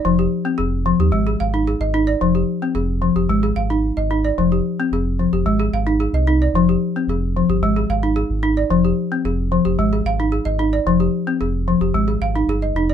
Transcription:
X:1
M:4/4
L:1/16
Q:1/4=111
K:Fdor
V:1 name="Balafon"
d G3 A3 G2 A f2 A e2 d- | d G3 A3 G2 A f3 e2 d- | d G3 A3 G2 A f2 A e2 d- | d G3 A3 G2 A f2 A3 d- |
d G3 A3 G2 A f2 A e2 d- | d G3 A3 G2 A f2 A e2 d |]
V:2 name="Balafon"
F,2 z C2 z F,2 A,2 z E2 z E2 | F,2 z C2 z F,2 A,2 z E2 z E2 | F,2 z C2 z F,2 A,2 z E2 z E2 | F,2 z C2 z F,2 A,2 z E2 z E2 |
F,2 z C2 z F,2 A,2 z E2 z E2 | F,2 z C2 z F,2 A,2 z E2 z E2 |]
V:3 name="Sub bass" clef=bass
F,,,2 z2 F,,,3 E,, A,,,2 A,,,3 A,,,3 | F,,,2 z2 F,,,3 F,,, A,,,2 A,,,3 A,,,3 | F,,,2 z2 F,,,3 F,,, A,,,2 A,,,3 C,,3 | F,,,2 z2 F,,,3 G,,, A,,,2 A,,,3 A,,,3 |
F,,,2 z2 F,,,3 F,,, A,,,2 A,,,3 A,,,3 | F,,,2 z2 F,,,3 F,,, A,,,2 A,,,2 G,,,2 F,,,2 |]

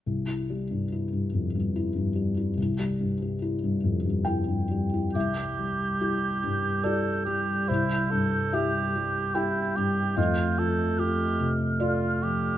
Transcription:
X:1
M:3/4
L:1/16
Q:1/4=72
K:Cdor
V:1 name="Flute"
z12 | z12 | g'12- | g'12- |
g'4 f'8 |]
V:2 name="Cor anglais"
z12 | z12 | G8 A2 G2 | =E2 A2 G4 E2 G2 |
F2 A2 G2 z2 F2 G2 |]
V:3 name="Clarinet" clef=bass
z12 | z12 | G,12- | G,12 |
A,12 |]
V:4 name="Felt piano"
z12 | z8 g4 | =e8 d4 | c4 =e4 g4 |
e8 d4 |]
V:5 name="Felt piano" clef=bass
C,, =E G, G,, E G,, F,, G,, E G,, G, E | C,, G, G,, G, =E G,, F,, G,, E G,, G, E | C,,2 G,2 [=EG]2 G,,2 [EG]2 G,2 | C,,2 G,,2 [=EG]2 G,2 [EG]2 G,,2 |
F,,2 F,2 [FA]2 C,2 [FA]2 F,2 |]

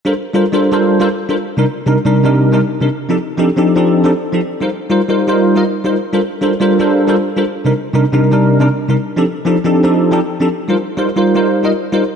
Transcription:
X:1
M:4/4
L:1/16
Q:1/4=158
K:Gm
V:1 name="Tine electric piano"
[G,DFABc] z2 [G,DFABc] z [G,DFABc]2 [G,DFABc]3 [G,DFABc] z2 [G,DFABc] z2 | [C,G,DEB] z2 [C,G,DEB] z [C,G,DEB]2 [C,G,DEB]3 [C,G,DEB] z2 [C,G,DEB] z2 | [F,CDEGA] z2 [F,CDEGA] z [F,CDEGA]2 [F,CDEGA]3 [F,CDEGA] z2 [F,CDEGA] z2 | [G,EFBc] z2 [G,EFBc] z [G,EFBc]2 [G,EFBc]3 [G,EFBe] z2 [G,EFBc] z2 |
[G,DFABc] z2 [G,DFABc] z [G,DFABc]2 [G,DFABc]3 [G,DFABc] z2 [G,DFABc] z2 | [C,G,DEB] z2 [C,G,DEB] z [C,G,DEB]2 [C,G,DEB]3 [C,G,DEB] z2 [C,G,DEB] z2 | [F,CDEGA] z2 [F,CDEGA] z [F,CDEGA]2 [F,CDEGA]3 [F,CDEGA] z2 [F,CDEGA] z2 | [G,EFBc] z2 [G,EFBc] z [G,EFBc]2 [G,EFBc]3 [G,EFBe] z2 [G,EFBc] z2 |]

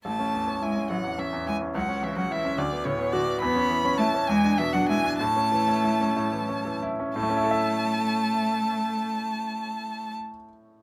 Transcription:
X:1
M:6/8
L:1/16
Q:3/8=65
K:A
V:1 name="Violin"
a4 g2 f2 e2 g2 | f2 e f e2 d2 c2 d2 | b4 a2 g2 e f g2 | a8- a2 z2 |
a12- | a12 |]
V:2 name="Grand piano"
A,,, C E,, C E C A,,, E,, C E,, E C | C,, C C, C E C D,, B, A,, B, F B, | E,, C E, C E C E,, D B,, D E D | A,, C E, C E C A,, E, C E, E C |
[A,,A,CEAe]12- | [A,,A,CEAe]12 |]
V:3 name="Cello" clef=bass
A,4 G,2 F,2 E,2 G,2 | F,2 E, F, E,2 D,2 C,2 D,2 | B,4 A,2 G,2 E, F, G,2 | A,8- A,2 z2 |
A,12- | A,12 |]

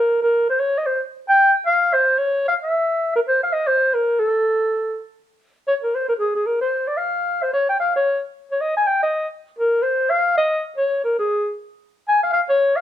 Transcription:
X:1
M:4/4
L:1/8
Q:"Swing" 1/4=224
K:Cphr
V:1 name="Clarinet"
B B2 c d e c z | z g2 z f2 c2 | d2 f =e4 B | [K:Ab] c f e c2 B2 =A- |
=A4- A z3 | z2 d B c B A A | B c2 =d f3 c | d g f d2 z2 d |
e a g e2 z2 B- | B c2 f2 e2 z | d2 B A3 z2 | z2 a f f d2 f |]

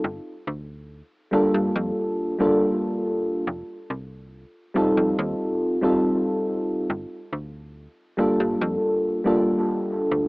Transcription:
X:1
M:4/4
L:1/16
Q:1/4=70
K:Gm
V:1 name="FM electric piano"
z6 [G,B,DFA]4- [G,B,DFA] [G,B,DFA]4- [G,B,DFA] | z6 [G,CEFA]4- [G,CEFA] [G,CEFA]4- [G,CEFA] | z6 [G,B,DFA]4- [G,B,DFA] [G,B,DFA]4- [G,B,DFA] |]
V:2 name="FM bass" clef=bass
G,,, z D,,3 z G,,, G,, F,, z2 F,,, z4 | F,,, z C,,3 z F,,, F,, E,, z2 E,,, z4 | G,,, z D,,3 z G,,, G,, F,, z2 F,,, z3 D,, |]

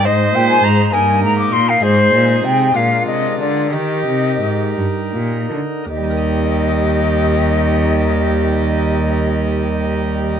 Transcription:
X:1
M:6/8
L:1/16
Q:3/8=56
K:Eb
V:1 name="Flute"
e2 g a b2 a2 b d' c' f | c4 g2 f2 e2 d2 | e6 z6 | e12- |
e12 |]
V:2 name="Violin"
c6 B6 | A6 F6 | G8- G z3 | G12- |
G12 |]
V:3 name="Pipe organ"
[A,Ec]6 [B,Ee]6 | [A,Ec]6 [A,DB]6 | [EB]12 | [E,G,EBe]12- |
[E,G,EBe]12 |]
V:4 name="Pipe organ" clef=bass
A,,2 B,,2 A,,2 G,,2 A,,2 B,,2 | A,,2 B,,2 C,2 B,,2 C,2 D,2 | E,2 C,2 A,,2 G,,2 B,,2 D,2 | z12 |
z12 |]
V:5 name="Cello" clef=bass
A,,2 B,,2 A,,2 G,,2 A,,2 B,,2 | A,,2 B,,2 C,2 B,,2 C,2 D,2 | E,2 C,2 A,,2 G,,2 B,,2 D,2 | E,,12- |
E,,12 |]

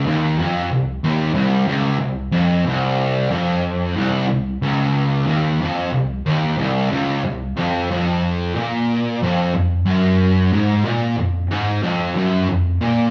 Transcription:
X:1
M:4/4
L:1/8
Q:1/4=92
K:Cphr
V:1 name="Distorted electric guitar" clef=bass
E,, F,, C,, E,, C,, D,, C,, F,, | C,,2 F,,2 C,, C,, D,,2 | E,, F,, C,, E,, C,, D,, C,, F,, | F,,2 B,,2 F,, F,, ^F,,2 |
A,, B,, F,, A,, F,, ^F,, =F,, B,, |]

